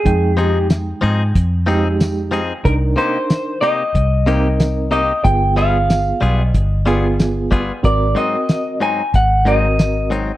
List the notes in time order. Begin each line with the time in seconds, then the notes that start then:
Already playing: G#4
0.05 F2 G#3 D#4 G5, kick, closed hi-hat
0.36 F3 C4 D#4 G4 G#4, closed hi-hat
0.70 snare, closed hi-hat, tambourine
1.01 G#2 F3 C4 D#4 G#4, closed hi-hat
1.35 F2, kick, closed hi-hat
1.66 F3 G#3 C4 D#4 G4 G#4, closed hi-hat
2.00 snare, closed hi-hat, tambourine
2.31 F3 C4 D#4 G#4, closed hi-hat
2.64 C2 D4 D#4 A#4, kick, closed hi-hat
2.96 C3 A#3 D#4 G4 C5, closed hi-hat
3.30 snare, closed hi-hat, tambourine
3.61 C3 A#3 D#4 G4 D#5, closed hi-hat
3.95 C2, kick, closed hi-hat
4.26 C3 A#3 C4 D#4 G4 A#4, closed hi-hat
4.60 snare, closed hi-hat, tambourine
4.91 C3 A#3 D#4 G4 D#5, closed hi-hat
5.24 G1 B3 F4 G#4 G5, kick, closed hi-hat
5.56 G3 B3 F4 G#4 F5, closed hi-hat
5.90 snare, closed hi-hat, tambourine
6.21 B1 G3 B3 F4 G#4, closed hi-hat
6.42 D#5
6.54 G1, kick, closed hi-hat
6.86 G3 B3 F4 G#4, closed hi-hat
7.20 snare, closed hi-hat, tambourine
7.51 G3 B3 F4 G#4, kick, closed hi-hat
7.83 G#1 C4 F#4 A#4 D5, kick, closed hi-hat
8.15 G#2 F#3 C4 D#4 D#5, closed hi-hat
8.49 snare, closed hi-hat, tambourine
8.80 G#2 F#3 C4 D#4 G#5, closed hi-hat
9.14 G#1 F#5, kick, closed hi-hat
9.45 G#2 F#3 C4 D#4 F#4 A#4 D#5, closed hi-hat
9.79 snare, closed hi-hat, tambourine
10.10 G#2 F#3 C4 D#4, closed hi-hat